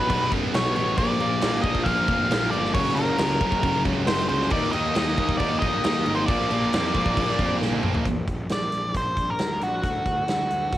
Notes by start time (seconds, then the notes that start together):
Already playing: B2 D#3 F#3 B3 F#4 B4
0.10 B1 B2 F#3 B3, kick, crash
0.31 F#2 B2 F#3 B3, kick, crash
0.53 B1 B2 F#3 B3 C#5, snare, crash
0.75 A1 B2 F#3 B3 C#5, crash
0.97 A#1 A#2 D3 F3 A#3 F4 A#4 D5, kick, crash
1.19 A#1 A#2 F3 A#3, crash
1.41 A#1 A#2 F3 A#3, snare, crash
1.62 A#1 A#2 F3 A#3 D#5, kick, crash
1.75 kick
1.84 A#1 A#2 F3 A#3 F5, kick, crash
2.07 F1 A#2 F3 A#3, kick, crash
2.29 A#1 A#2 F3 A#3, snare, crash
2.51 G1 A#2 F3 A#3 D5, crash
2.65 snare
2.74 F#1 F#2 C#3 F#3 A#3 F#4 C#5, kick, crash
2.95 F#1 F#2 C#3 F#3 A#4, crash
3.18 C#2 F#2 C#3 F#3, snare, crash
3.41 F#1 F#2 C#3 F#3, kick, crash
3.52 kick
3.63 F#1 F#2 C#3 F#3, kick, crash
3.85 C#2 F#2 C#3 F#3, kick, crash
4.07 F#1 F#2 C#3 F#3 C5, snare, crash
4.29 C#2 F#2 C#3 F#3 C5, crash
4.41 snare
4.50 D#2 D#3 A#3 D#4 F#4 D5, kick, crash
4.72 D#2 D#3 A#3 D#4 D#5, crash
4.95 D#2 D#3 A#3 D#4, snare, crash
5.17 D#2 D#3 A#3 D#4, kick, crash
5.29 kick
5.38 D#2 D#3 A#3 D#4 D5, kick, crash
5.59 A#1 D#3 A#3 D#5, kick, crash
5.63 D#4
5.84 D#2 D#3 A#3 D#4, snare, crash
6.06 G#1 D#3 A#3 D#4, crash
6.15 C5
6.26 A#1 A#2 D3 F3 F4 D5, kick, crash
6.31 A#3
6.50 A#1 A#2 F3 A#3, crash
6.73 F2 A#2 F3 A#3, snare, crash
6.94 A#1 A#2 F3 A#3, kick, crash
7.06 kick
7.17 A#1 A#2 F3 A#3, kick, crash
7.39 F2 A#2 F3 A#3, kick, crash
7.61 A#1 A#2 F3 A#3, snare
7.73 high tom
7.83 A#1 A#2 F3 A#3, mid tom
7.95 floor tom
8.05 A#1, kick, closed hi-hat
8.27 A#1, kick, closed hi-hat
8.49 A#1 D5, snare, closed hi-hat
8.72 A#1, closed hi-hat
8.94 A#1 C5, kick, closed hi-hat
9.17 A#1, kick, closed hi-hat
9.30 A#4
9.39 D2, snare, closed hi-hat
9.61 A#1 F#4, closed hi-hat
9.83 D2, kick, closed hi-hat
10.06 D2, kick, closed hi-hat
10.28 D2, snare, closed hi-hat
10.50 D2, closed hi-hat
10.72 D2, kick, closed hi-hat